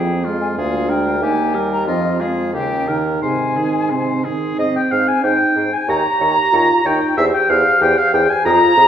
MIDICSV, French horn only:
0, 0, Header, 1, 2, 480
1, 0, Start_track
1, 0, Key_signature, -4, "major"
1, 0, Tempo, 654308
1, 414, Time_signature, 2, 2, 24, 8
1, 1859, Tempo, 683371
1, 3299, Tempo, 643087
1, 6505, End_track
2, 0, Start_track
2, 0, Title_t, "French horn"
2, 0, Program_c, 0, 60
2, 0, Note_on_c, 0, 53, 46
2, 182, Note_on_c, 0, 56, 45
2, 193, Note_off_c, 0, 53, 0
2, 414, Note_off_c, 0, 56, 0
2, 418, Note_on_c, 0, 58, 51
2, 656, Note_on_c, 0, 56, 48
2, 667, Note_off_c, 0, 58, 0
2, 889, Note_off_c, 0, 56, 0
2, 894, Note_on_c, 0, 58, 48
2, 1135, Note_on_c, 0, 55, 45
2, 1146, Note_off_c, 0, 58, 0
2, 1370, Note_off_c, 0, 55, 0
2, 1374, Note_on_c, 0, 53, 50
2, 1617, Note_on_c, 0, 56, 44
2, 1628, Note_off_c, 0, 53, 0
2, 1859, Note_off_c, 0, 56, 0
2, 1863, Note_on_c, 0, 49, 45
2, 2102, Note_on_c, 0, 51, 40
2, 2112, Note_off_c, 0, 49, 0
2, 2339, Note_off_c, 0, 51, 0
2, 2344, Note_on_c, 0, 48, 46
2, 2584, Note_on_c, 0, 51, 41
2, 2595, Note_off_c, 0, 48, 0
2, 2821, Note_on_c, 0, 48, 38
2, 2832, Note_off_c, 0, 51, 0
2, 3063, Note_on_c, 0, 51, 38
2, 3073, Note_off_c, 0, 48, 0
2, 3288, Note_off_c, 0, 51, 0
2, 3292, Note_on_c, 0, 60, 59
2, 3783, Note_on_c, 0, 63, 61
2, 3794, Note_off_c, 0, 60, 0
2, 4137, Note_off_c, 0, 63, 0
2, 4264, Note_on_c, 0, 67, 66
2, 4751, Note_on_c, 0, 65, 65
2, 4762, Note_off_c, 0, 67, 0
2, 4988, Note_off_c, 0, 65, 0
2, 4992, Note_on_c, 0, 63, 61
2, 5227, Note_off_c, 0, 63, 0
2, 5236, Note_on_c, 0, 67, 79
2, 5701, Note_off_c, 0, 67, 0
2, 5712, Note_on_c, 0, 67, 83
2, 6177, Note_off_c, 0, 67, 0
2, 6185, Note_on_c, 0, 65, 79
2, 6417, Note_off_c, 0, 65, 0
2, 6421, Note_on_c, 0, 68, 81
2, 6505, Note_off_c, 0, 68, 0
2, 6505, End_track
0, 0, End_of_file